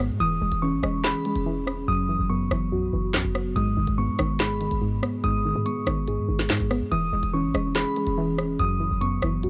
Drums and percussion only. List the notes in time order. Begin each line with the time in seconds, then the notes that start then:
0.20 closed hi-hat
0.52 closed hi-hat
0.83 cross-stick, closed hi-hat
1.04 snare, clap
1.25 closed hi-hat
1.36 closed hi-hat
1.67 cross-stick, closed hi-hat
2.51 cross-stick
3.14 snare, clap
3.35 cross-stick
3.56 closed hi-hat
3.87 closed hi-hat
4.19 cross-stick, closed hi-hat
4.40 snare, clap
4.61 closed hi-hat
4.71 closed hi-hat
5.03 cross-stick, closed hi-hat
5.24 closed hi-hat
5.66 closed hi-hat
5.87 cross-stick, closed hi-hat
6.08 closed hi-hat
6.39 snare, closed hi-hat
6.50 snare, clap
6.60 closed hi-hat
6.71 cross-stick, open hi-hat
6.92 closed hi-hat
7.23 closed hi-hat
7.54 cross-stick, closed hi-hat
7.76 snare, clap
7.96 closed hi-hat
8.07 closed hi-hat
8.38 cross-stick, closed hi-hat
8.59 closed hi-hat
9.01 closed hi-hat
9.22 cross-stick, closed hi-hat
9.43 closed hi-hat